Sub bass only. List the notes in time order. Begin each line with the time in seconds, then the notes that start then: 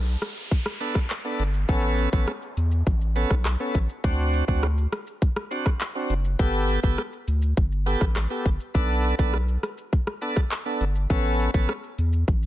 Already playing: B1
1.39 G1
1.69 A1
2.13 A1
2.57 E2
2.87 A1
3.31 B1
3.75 A1
4.04 D2
4.48 D2
6.10 F#1
6.39 G1
6.84 G1
7.28 D2
7.57 G1
8.01 A1
8.46 G1
8.75 B1
9.19 B1
10.81 G1
11.10 A1
11.54 A1
11.98 E2
12.28 A1